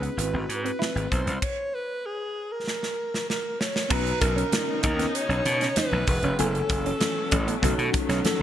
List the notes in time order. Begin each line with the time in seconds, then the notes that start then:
Already playing: C#4 D#4 F#4 G#4 B4
0.02 B3, closed hi-hat
0.17 G#1 B3 E4 F#4 B4, closed hi-hat
0.23 C4
0.34 G#1 C4
0.49 G#2, muted clean electric guitar stroke, closed hi-hat
0.64 C4 B4, closed hi-hat
0.79 E4, snare
0.95 G#1, muted clean electric guitar stroke, closed hi-hat
1.11 B1 C5, kick, closed hi-hat
1.26 C2 C4, closed hi-hat
1.35 C5
1.42 C#5, kick, crash
1.74 B4
2.06 G#4
2.52 A#4
2.67 snare
2.83 snare
3.14 snare
3.29 A#4, snare
3.60 C#5, snare
3.76 snare
3.89 B1 C#3 B3 C#4 D#4 F#4 B4 A#5, kick, crash
4.07 closed hi-hat
4.21 B1 A#4, muted clean electric guitar stroke, kick, closed hi-hat, muted conga
4.36 C#4, closed hi-hat
4.52 muted clean electric guitar stroke, snare, closed hi-hat, high conga
4.83 D#2 D#4 A#4, kick, closed hi-hat, muted conga
4.99 B3, snare, closed hi-hat
5.15 C#5, closed hi-hat
5.29 B1 C#4, closed hi-hat
5.45 B2, muted clean electric guitar stroke, closed hi-hat, muted conga
5.61 C#4, snare, closed hi-hat
5.76 D#4 B4, snare, closed hi-hat, high conga
5.92 B1, muted clean electric guitar stroke, high conga
6.07 E1 B4, kick, open hi-hat
6.23 F1 C#4, closed hi-hat
6.38 F#1 E3 F#3 A3 B3 C#4 E4 A4 G#5, closed hi-hat
6.55 closed hi-hat
6.69 F#1, muted clean electric guitar stroke, kick, closed hi-hat, muted conga
6.86 C#4, closed hi-hat
7.00 muted clean electric guitar stroke, snare, closed hi-hat, high conga
7.31 A1 C#4, kick, closed hi-hat, muted conga
7.48 B3, closed hi-hat
7.62 B1 D#3 B3 C#4 D#4 F#4 A4, kick, closed hi-hat, low conga
7.78 B2, closed hi-hat
7.94 muted clean electric guitar stroke, kick, closed hi-hat, muted conga
8.09 B1 C#4, snare, closed hi-hat
8.24 A4, snare, closed hi-hat, high conga